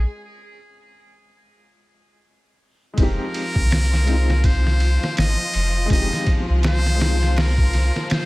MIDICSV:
0, 0, Header, 1, 6, 480
1, 0, Start_track
1, 0, Key_signature, -4, "minor"
1, 0, Tempo, 731707
1, 31, Time_signature, 4, 2, 24, 8
1, 5415, End_track
2, 0, Start_track
2, 0, Title_t, "Muted trumpet"
2, 0, Program_c, 0, 59
2, 1960, Note_on_c, 0, 70, 110
2, 2919, Note_on_c, 0, 72, 104
2, 2928, Note_off_c, 0, 70, 0
2, 3395, Note_off_c, 0, 72, 0
2, 3402, Note_on_c, 0, 75, 120
2, 3850, Note_off_c, 0, 75, 0
2, 3880, Note_on_c, 0, 75, 116
2, 4167, Note_off_c, 0, 75, 0
2, 4358, Note_on_c, 0, 72, 123
2, 4838, Note_on_c, 0, 70, 108
2, 4848, Note_off_c, 0, 72, 0
2, 5315, Note_off_c, 0, 70, 0
2, 5320, Note_on_c, 0, 72, 104
2, 5415, Note_off_c, 0, 72, 0
2, 5415, End_track
3, 0, Start_track
3, 0, Title_t, "Felt piano"
3, 0, Program_c, 1, 0
3, 0, Control_c, 1, 64, 127
3, 0, Note_on_c, 1, 56, 61
3, 0, Note_on_c, 1, 60, 58
3, 0, Note_on_c, 1, 61, 54
3, 0, Note_on_c, 1, 65, 74
3, 1915, Note_off_c, 1, 56, 0
3, 1925, Note_off_c, 1, 60, 0
3, 1926, Note_on_c, 1, 56, 83
3, 1936, Note_off_c, 1, 61, 0
3, 1945, Note_off_c, 1, 65, 0
3, 1947, Note_on_c, 1, 60, 81
3, 1961, Control_c, 1, 64, 0
3, 1968, Note_on_c, 1, 63, 81
3, 1986, Note_on_c, 1, 67, 96
3, 2074, Control_c, 1, 64, 127
3, 2634, Note_off_c, 1, 56, 0
3, 2645, Note_off_c, 1, 60, 0
3, 2646, Note_on_c, 1, 56, 75
3, 2655, Note_off_c, 1, 63, 0
3, 2665, Note_off_c, 1, 67, 0
3, 2666, Note_on_c, 1, 60, 65
3, 2687, Note_on_c, 1, 63, 72
3, 2709, Note_on_c, 1, 65, 79
3, 3833, Note_off_c, 1, 56, 0
3, 3843, Note_on_c, 1, 56, 91
3, 3845, Note_off_c, 1, 60, 0
3, 3855, Note_off_c, 1, 63, 0
3, 3864, Note_on_c, 1, 60, 75
3, 3866, Note_off_c, 1, 65, 0
3, 3887, Note_on_c, 1, 63, 81
3, 3907, Note_on_c, 1, 67, 98
3, 4553, Note_off_c, 1, 56, 0
3, 4563, Note_on_c, 1, 56, 77
3, 4564, Note_off_c, 1, 60, 0
3, 4575, Note_off_c, 1, 63, 0
3, 4583, Note_on_c, 1, 60, 74
3, 4585, Note_off_c, 1, 67, 0
3, 4604, Note_on_c, 1, 63, 68
3, 4626, Note_on_c, 1, 65, 86
3, 5415, Note_off_c, 1, 56, 0
3, 5415, Note_off_c, 1, 60, 0
3, 5415, Note_off_c, 1, 63, 0
3, 5415, Note_off_c, 1, 65, 0
3, 5415, End_track
4, 0, Start_track
4, 0, Title_t, "String section"
4, 0, Program_c, 2, 48
4, 1954, Note_on_c, 2, 53, 83
4, 1956, Note_on_c, 2, 65, 82
4, 5415, Note_off_c, 2, 53, 0
4, 5415, Note_off_c, 2, 65, 0
4, 5415, End_track
5, 0, Start_track
5, 0, Title_t, "Sub bass"
5, 0, Program_c, 3, 38
5, 1956, Note_on_c, 3, 29, 99
5, 2077, Note_off_c, 3, 29, 0
5, 2336, Note_on_c, 3, 36, 91
5, 3267, Note_off_c, 3, 36, 0
5, 3397, Note_on_c, 3, 32, 92
5, 3518, Note_off_c, 3, 32, 0
5, 3636, Note_on_c, 3, 29, 85
5, 3850, Note_off_c, 3, 29, 0
5, 3875, Note_on_c, 3, 29, 98
5, 3997, Note_off_c, 3, 29, 0
5, 4257, Note_on_c, 3, 36, 92
5, 5187, Note_off_c, 3, 36, 0
5, 5415, End_track
6, 0, Start_track
6, 0, Title_t, "Drums"
6, 1952, Note_on_c, 9, 36, 110
6, 1952, Note_on_c, 9, 51, 87
6, 2017, Note_off_c, 9, 36, 0
6, 2018, Note_off_c, 9, 51, 0
6, 2194, Note_on_c, 9, 51, 69
6, 2259, Note_off_c, 9, 51, 0
6, 2333, Note_on_c, 9, 36, 92
6, 2398, Note_off_c, 9, 36, 0
6, 2433, Note_on_c, 9, 46, 74
6, 2442, Note_on_c, 9, 38, 100
6, 2499, Note_off_c, 9, 46, 0
6, 2508, Note_off_c, 9, 38, 0
6, 2582, Note_on_c, 9, 38, 40
6, 2648, Note_off_c, 9, 38, 0
6, 2672, Note_on_c, 9, 51, 63
6, 2737, Note_off_c, 9, 51, 0
6, 2820, Note_on_c, 9, 38, 43
6, 2886, Note_off_c, 9, 38, 0
6, 2911, Note_on_c, 9, 36, 114
6, 2911, Note_on_c, 9, 51, 91
6, 2976, Note_off_c, 9, 36, 0
6, 2977, Note_off_c, 9, 51, 0
6, 3061, Note_on_c, 9, 38, 46
6, 3127, Note_off_c, 9, 38, 0
6, 3150, Note_on_c, 9, 51, 68
6, 3216, Note_off_c, 9, 51, 0
6, 3302, Note_on_c, 9, 38, 45
6, 3368, Note_off_c, 9, 38, 0
6, 3391, Note_on_c, 9, 51, 91
6, 3401, Note_on_c, 9, 38, 125
6, 3457, Note_off_c, 9, 51, 0
6, 3466, Note_off_c, 9, 38, 0
6, 3631, Note_on_c, 9, 51, 71
6, 3696, Note_off_c, 9, 51, 0
6, 3870, Note_on_c, 9, 51, 91
6, 3871, Note_on_c, 9, 36, 103
6, 3936, Note_off_c, 9, 36, 0
6, 3936, Note_off_c, 9, 51, 0
6, 4021, Note_on_c, 9, 38, 37
6, 4087, Note_off_c, 9, 38, 0
6, 4110, Note_on_c, 9, 36, 92
6, 4110, Note_on_c, 9, 51, 67
6, 4175, Note_off_c, 9, 51, 0
6, 4176, Note_off_c, 9, 36, 0
6, 4350, Note_on_c, 9, 51, 79
6, 4359, Note_on_c, 9, 38, 116
6, 4415, Note_off_c, 9, 51, 0
6, 4424, Note_off_c, 9, 38, 0
6, 4503, Note_on_c, 9, 38, 47
6, 4569, Note_off_c, 9, 38, 0
6, 4592, Note_on_c, 9, 46, 66
6, 4601, Note_on_c, 9, 38, 97
6, 4658, Note_off_c, 9, 46, 0
6, 4667, Note_off_c, 9, 38, 0
6, 4742, Note_on_c, 9, 38, 49
6, 4807, Note_off_c, 9, 38, 0
6, 4831, Note_on_c, 9, 46, 82
6, 4840, Note_on_c, 9, 38, 108
6, 4897, Note_off_c, 9, 46, 0
6, 4906, Note_off_c, 9, 38, 0
6, 4971, Note_on_c, 9, 36, 95
6, 5037, Note_off_c, 9, 36, 0
6, 5073, Note_on_c, 9, 51, 65
6, 5082, Note_on_c, 9, 38, 35
6, 5139, Note_off_c, 9, 51, 0
6, 5148, Note_off_c, 9, 38, 0
6, 5222, Note_on_c, 9, 38, 46
6, 5288, Note_off_c, 9, 38, 0
6, 5313, Note_on_c, 9, 51, 86
6, 5322, Note_on_c, 9, 38, 123
6, 5378, Note_off_c, 9, 51, 0
6, 5387, Note_off_c, 9, 38, 0
6, 5415, End_track
0, 0, End_of_file